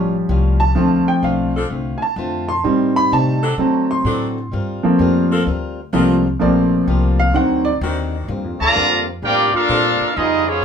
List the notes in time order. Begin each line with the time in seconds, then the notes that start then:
Already playing: A1 A2 F3 G3 C#4 F4
0.29 C2 A2 G3 C#4 F4
0.60 A5
0.75 D2 D3 F3 A3 C4 F4
1.08 G5, muted upright bass stroke
1.22 B1 D3 A3 C4 F4 F5
1.55 F3 C4 D4 A4
1.69 C2 D3 A3 C4 F4
1.98 G#5, muted upright bass stroke
2.02 A5
2.16 F2 D3 A3 C4 F4
2.49 C6
2.64 A2 D#3 G3 C4 D#4
2.96 B5
3.11 A2 C3 G3 C4 D#4 A5
3.42 F#3 C4 D4 A4
3.57 D3 F#3 A3 C4 F#4 A4
3.91 C6
4.04 A2 D3 F#3 C4 D4 F#4 A4
4.52 G2 G3 C4 F4 A#4
4.83 F3 A3 A#3 C4, muted upright bass stroke
4.99 F2 G3 C4 F4 A#4
5.31 F3 A#3 C4 A4
5.45 D2 G3 C4 F4 A#4
5.93 C2 F3 G3 A3 A#3 C4 F4 A#4
6.39 A#1 F3 G3 A3 A#3 C4 F4 A#4 D5
6.87 C2 G3 C4 F4 A#4
7.20 F5
7.34 D2 D3 D#3 F#3 C4 D#4 F#5
7.65 D5
7.81 D#2 D3 D#3 F#3 C4 D4 D#4 F#4
8.28 G2 F3 A#3 C4
8.44 F2
8.60 D2 D3 F3 A#3 F4 D5 A5 A#5
8.75 F2 G2 F3 A#3 C4
9.22 G2 A2 F3 A#3 C4 D4 F4 G4 A#4 D5 G5
9.53 A#3 D4 F4 A4 A#4 F5, muted upright bass stroke
9.68 G2 A#2 F3 A#3 C4 A4
10.01 muted upright bass stroke
10.14 F2 C#3 G3 B3 D#4 F4 G#4 D#5
10.19 F4
10.45 F3 B3 C#4 F4 G#4 C#5